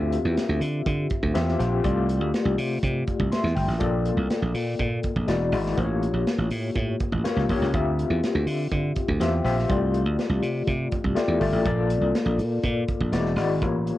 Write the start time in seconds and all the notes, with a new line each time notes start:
Already playing: D2 C4 F4 G4 E5
0.12 closed hi-hat
0.25 E2
0.37 snare, closed hi-hat
0.49 D2
0.61 D3, closed hi-hat
0.86 D3, kick, closed hi-hat
1.10 kick, closed hi-hat
1.23 D2, kick
1.34 E2 C4 F4 G4 E5, snare, closed hi-hat
1.48 snare
1.59 A#1 C4 F4 G4 G5, snare, closed hi-hat
1.84 C2 A3 F4 G4 D5, kick, closed hi-hat
2.09 closed hi-hat
2.21 D2
2.34 snare, closed hi-hat
2.45 C2
2.58 C3, open hi-hat
2.83 C3, kick, closed hi-hat
3.07 kick, closed hi-hat
3.20 C2, kick
3.32 E5 C6, snare, closed hi-hat
3.44 E2, snare
3.55 G1 G5, kick, snare, open hi-hat
3.68 A1, snare
3.79 A#1 A#3 F4 A4 D5, kick, closed hi-hat
4.05 closed hi-hat
4.17 C2
4.30 snare, closed hi-hat
4.42 A#1
4.54 A#2, open hi-hat
4.79 A#2, kick, closed hi-hat
5.03 kick, closed hi-hat
5.16 A#1, kick
5.27 E1 G#3 E4 F#4 D5, snare, closed hi-hat
5.52 G#1 G#3 E4 F#4 D5, open hi-hat
5.66 snare
5.77 A1 A#3 F4 G4 C5, kick, closed hi-hat
5.85 C#5
6.03 closed hi-hat
6.14 A#1
6.27 snare, closed hi-hat
6.38 A1
6.50 A2, open hi-hat
6.75 A2, kick, closed hi-hat
7.00 kick, closed hi-hat
7.12 A1, kick
7.24 A#3 F4 G4 C#5, snare, closed hi-hat
7.37 C#2, snare
7.49 A#1 A#3 F4 G4 C#5, kick, open hi-hat
7.62 C#2, snare
7.74 D2 C4 F4 G4 E5, kick, closed hi-hat
7.99 closed hi-hat
8.10 E2
8.24 snare, closed hi-hat
8.35 D2
8.47 D3, open hi-hat
8.72 D3, kick, closed hi-hat
8.96 kick, closed hi-hat
9.08 D2, kick
9.20 E2 C4 F4 G4 E5, snare, closed hi-hat
9.44 A#1 C4 F4 G4 E5, snare, open hi-hat
9.59 snare
9.68 C2 G3 F4 G4 D5, kick, closed hi-hat
9.74 A3
9.94 closed hi-hat
10.06 D2
10.19 snare, closed hi-hat
10.29 C2
10.42 C3, open hi-hat
10.67 C3, kick, closed hi-hat
10.91 kick, closed hi-hat
11.04 C2, kick
11.15 A3 F4 G4 D5, snare, closed hi-hat
11.28 E2
11.40 G1 A3 F4 G4 D5, kick, open hi-hat
11.52 A1
11.65 A#1 A#3 F4 A4 D5, kick, closed hi-hat
11.90 closed hi-hat
12.01 C2
12.15 snare, closed hi-hat
12.26 A#1
12.38 A#2, open hi-hat
12.63 A#2, kick, closed hi-hat
12.88 kick, closed hi-hat
13.01 A#1, kick
13.12 E1 G#3 E4 F#4 D5, snare, closed hi-hat
13.26 snare
13.36 G#1 G#3 E4 F#4 D5, snare, open hi-hat
13.61 A1 A#3 F4 G4 C#5, kick, closed hi-hat
13.87 closed hi-hat